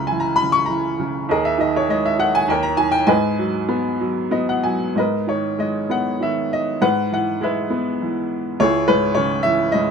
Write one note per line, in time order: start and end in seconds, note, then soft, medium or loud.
0.00 1.25 C#2 medium
0.00 0.40 C#3 soft
0.00 0.37 B4 medium
0.00 0.37 E5 soft
0.00 0.20 A#5 medium
0.00 0.36 B5 medium
0.07 0.25 G#5 medium
0.11 0.68 E3 medium
0.20 0.37 A#5 medium
0.36 0.54 B5 loud
0.42 0.98 C#3 soft
0.52 0.68 C#6 loud
0.66 1.27 E3 soft
0.66 0.95 A#5 medium
0.99 1.29 C#3 medium
1.29 2.44 D#2 medium
1.29 2.15 G#4 medium
1.29 2.15 A#4 medium
1.29 1.44 D#5 medium
1.45 1.60 E5 medium
1.58 2.17 D#3 medium
1.58 1.75 D#5 medium
1.76 1.90 C#5 medium
1.89 2.46 G#3 medium
1.89 2.03 D#5 medium
2.06 2.18 E5 medium
2.18 2.47 D#3 medium
2.18 2.33 F#5 loud
2.35 2.48 G#5 loud
2.48 3.06 D#2 medium
2.48 3.05 A#4 medium
2.48 3.06 C#5 medium
2.48 2.64 G5 medium
2.63 2.78 A#5 medium
2.77 3.07 D#3 medium
2.77 2.91 G#5 loud
2.92 3.06 G5 loud
3.07 4.92 G#2 medium
3.07 4.29 B4 medium
3.07 4.29 D#5 medium
3.07 4.28 G#5 loud
3.39 3.99 F#3 medium
3.69 4.30 B3 medium
4.00 4.63 F#3 medium
4.31 4.94 B3 medium
4.31 4.47 D#5 medium
4.49 4.64 F#5 medium
4.63 4.96 F#3 medium
4.63 4.94 G#5 medium
4.95 6.77 G#2 soft
4.95 5.87 A#4 medium
4.95 5.87 B4 medium
4.95 5.29 D#5 medium
5.27 6.19 D#3 soft
5.27 5.57 C#5 medium
5.59 6.78 G#3 medium
5.59 5.88 D#5 medium
5.90 6.79 B3 soft
5.90 6.22 F#5 medium
6.20 6.79 D#3 soft
6.20 6.53 E5 medium
6.53 6.83 D#5 medium
6.81 8.56 G#2 medium
6.81 7.42 B4 medium
6.81 7.12 F#5 loud
7.12 8.00 E3 soft
7.12 7.44 F#5 medium
7.41 8.56 G#3 medium
7.41 8.28 B4 medium
7.41 8.28 E5 medium
7.70 8.57 B3 medium
8.02 8.59 E3 medium
8.60 9.91 C#2 medium
8.60 9.42 E4 medium
8.60 9.42 G#4 medium
8.60 8.87 C#5 loud
8.88 9.73 G#2 medium
8.88 9.15 B4 loud
9.15 9.91 C#3 medium
9.15 9.42 C#5 medium
9.43 9.91 E3 medium
9.43 9.71 E5 loud
9.72 9.91 G#2 soft
9.72 9.91 D#5 loud